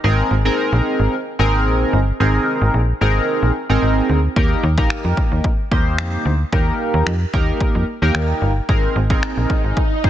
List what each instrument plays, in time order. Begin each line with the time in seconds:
0.04 fm bass G#1, analog polysynth C4 D#4 G#4 A#4
0.31 fm bass G#1
0.45 analog polysynth C4 D#4 G#4 A#4
0.72 fm bass A#1
1.00 fm bass G#1
1.39 fm bass G#1, analog polysynth C4 D#4 G#4 A#4
1.66 fm bass A#1
1.93 fm bass G1
2.20 fm bass G#1, analog polysynth C4 D#4 G#4 A#4
2.62 fm bass G#1
2.74 fm bass A#1
3.01 fm bass G#1, analog polysynth C4 D#4 G#4 A#4
3.43 fm bass A#1
3.69 fm bass G#1, analog polysynth C4 D#4 G#4 A#4
3.82 fm bass G#1
4.09 fm bass D2
4.36 fm bass D#2, analog polysynth A#3 D#4 G4 A#4, kick
4.63 fm bass D#2
4.78 analog polysynth A#3 D#4 G4 A#4, kick
4.90 finger snap
5.05 fm bass F2
5.17 kick
5.32 fm bass D#2
5.44 kick
5.71 fm bass D#2, analog polysynth A#3 D#4 G4 C5, kick
5.98 fm bass F2, finger snap
6.25 fm bass D2
6.52 fm bass D#2, analog polysynth A#3 D#4 G4 A#4, kick
6.94 fm bass D#2
7.07 fm bass F2, finger snap
7.33 fm bass D#2, analog polysynth A#3 D#4 G4 A#4, kick
7.61 kick
7.75 fm bass F2
8.02 fm bass D#2, analog polysynth A#3 D#4 G4 A#4
8.15 fm bass D#2, finger snap
8.42 fm bass G1
8.69 fm bass G#1, analog polysynth C4 D#4 G#4 A#4, kick, swell
8.96 fm bass G#1
9.10 analog polysynth C4 D#4 G#4 A#4, kick
9.23 finger snap
9.37 fm bass A#1
9.50 kick
9.64 fm bass G#1
9.77 kick
10.04 fm bass G#1, analog polysynth C4 D#4 G#4 C5, kick